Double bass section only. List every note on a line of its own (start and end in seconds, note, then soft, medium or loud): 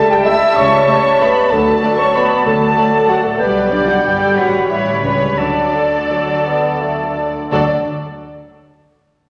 0.56 0.83 C#2 medium
1.51 1.77 D2 medium
2.46 2.71 D2 medium
3.40 4.01 B1 medium
4.05 4.36 G1 soft
4.36 5.02 A1 soft
5.03 5.37 C#2 soft
5.37 7.32 D2 soft
7.52 7.70 D2 medium